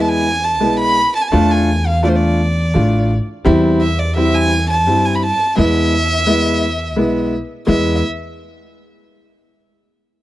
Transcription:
Already playing: E2 G#3 B3 E4
0.01 A5
0.09 G#5
0.44 A5
0.60 B1 G#3 B3 E4
0.79 B5
1.15 A5
1.21 G#5
1.28 A5
1.32 E2 A3 D4 F4
1.51 G#5
1.86 F5
2.03 A3 D4 F4 D5
2.08 C5
2.15 D5
2.74 A1 A3 D4 F4
3.45 E2 G3 C4 E4
3.80 E5
3.99 D5
4.16 G3 C4 E4 E5
4.34 G#5
4.70 A5
4.87 G2 G3 C4 E4
5.05 G#5
5.15 B5
5.23 A5
5.56 E2 G#3 B3 E4 E5
6.26 G#3 B3 E4
6.96 B1 G#3 B3 E4
7.67 E2 G#3 B3 E4 E5

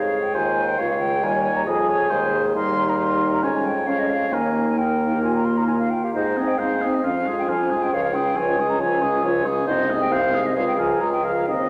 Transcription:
Already playing: F2 G#3 G#4 C#5 F5
0.22 G5
0.33 D#2 F4 C5 G#5
0.68 G5
0.78 C#2 G#3 F4 C#5 F5
0.90 F5
0.99 G5
1.22 D#2 G3 G4 G#5
1.56 A#5
1.66 F2 F3 G#4 D#5 G#5
1.89 C#5
2.10 D#2 G#3 G#4 C5
2.55 D#2 G3 D#4 A#4 C6
2.89 A#5
2.99 C6
3.33 A#5
3.43 F2 G#3 C#4 C#5 G#5
3.55 G#5
3.65 G5
3.87 G#3 C#4 C#5 F5
3.99 D#5
4.10 F5
4.32 D#2 A#3 D#4 A#4 G#5
4.77 A#3 D#4 A#4 G5
5.13 G4
5.23 F4 G#5
5.36 A#5
5.45 C6
5.57 D#4 A#5
5.67 F4 G#5
5.79 F5
5.90 G5
6.04 G4 F5
6.14 G#2 G#3 D#4 C5 D#5
6.36 C4 G#4
6.48 G5
6.58 G#2 G#3 D#4 C5 F5
6.81 C4 G#4
6.94 D#5
7.03 F2 F3 C#4 F4 F5
7.26 G#3 F4 G#4
7.38 G5
7.48 F2 F3 C#4 F4 G#5
7.70 G#3 F4 G#4
7.82 G5
7.92 C#2 F3 F4 C#5 F5
8.04 F5
8.13 G#3 C#4 G#4 G5
8.35 C#2 F3 F4 C#5 G#5
8.58 G#3 C#4 G#4
8.70 A#5
8.79 C#2 F3 F4 C#5 G#5
9.01 G#3 C#4 G#4
9.23 C#2 F3 F4 C#5
9.45 G#3 C#4 G#4
9.67 C2 C4 D#4 C5 D#5
9.90 G#3 C4 G#4
10.01 G5
10.11 C2 C4 D#4 C5 F5
10.33 G#3 C4 G#4
10.46 D#5
10.55 C#2 G#3 F4 G#4 F5
10.68 G5
10.77 F3 G#4 A#4 G#5
11.00 C#2 G#3 F4 G#4 A#5
11.12 G5
11.24 F3 G#4 A#4 F5
11.47 D#2 C4 D#4 D#5

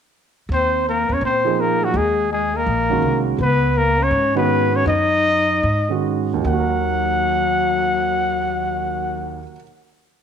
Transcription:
0.49 D#2 C4
0.53 C5
0.87 A#3 A#4
1.09 E2 C#4
1.13 C#5
1.21 A#2 C4
1.25 C5
1.45 F3 A#3 D#4 G#4
1.59 A#3 A#4
1.84 F#3 F#4
1.94 D#2 G#3 G#4
2.32 G#3 G#4
2.56 A#3 A#4
2.66 A#1
2.90 D#3 G#3 C#4 F#4
3.02 C2
3.39 C#2 B3 B4
3.76 A#3 A#4
4.00 C#4 C#5
4.11 G#2
4.35 D#3 G#3 B3 C#4 F#4 B4
4.74 C#4 C#5
4.86 F#2 D#4 D#5
5.63 G#2
5.89 D#3 G#3 C#4 F#4
6.34 D#2
6.40 D#3
6.45 D#2 F#3 A#3 F#5
6.52 F#4
6.59 A#4

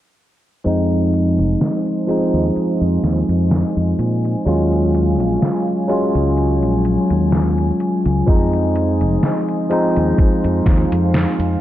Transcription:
0.64 F2 F3 G#3 C4 D#4 F4 C5 D#5 G#5, closed hi-hat
0.92 closed hi-hat
1.14 closed hi-hat
1.39 F1, closed hi-hat
1.61 snare, closed hi-hat
1.87 closed hi-hat
2.07 F3 G#3 C4 D#4, closed hi-hat
2.34 D#2, closed hi-hat
2.56 muted fingered electric bass stroke, closed hi-hat
2.81 F2, closed hi-hat
3.03 D#2, snare, closed hi-hat
3.29 F2, closed hi-hat
3.51 snare, closed hi-hat
3.77 F2, closed hi-hat
3.99 A#2, closed hi-hat
4.25 closed hi-hat
4.45 D#2 F#3 G#3 C#4 F4 C#5 F5, closed hi-hat
4.72 closed hi-hat
4.95 closed hi-hat
5.19 A#1, closed hi-hat
5.42 snare, closed hi-hat
5.68 closed hi-hat
5.88 F#3 G#3 C#4 F4, closed hi-hat
6.15 C#2, closed hi-hat
6.37 closed hi-hat
6.63 A#1, closed hi-hat
6.85 closed hi-hat
7.10 D#2, closed hi-hat
7.32 snare, closed hi-hat
7.58 closed hi-hat
7.80 closed hi-hat
8.06 C#2, closed hi-hat
8.26 F2 F3 G#3 C4 D#4 F4 C5 D#5, kick, closed hi-hat
8.53 closed hi-hat
8.76 closed hi-hat
9.01 F1, closed hi-hat
9.23 snare, closed hi-hat
9.49 closed hi-hat
9.69 F3 G#3 C4 D#4, closed hi-hat
9.96 D#2, closed hi-hat
10.18 F5, muted fingered electric bass stroke, kick, closed hi-hat
10.44 F2, closed hi-hat
10.66 D#2, kick, snare, closed hi-hat
10.92 F2, closed hi-hat
11.14 snare, closed hi-hat
11.39 F2, closed hi-hat

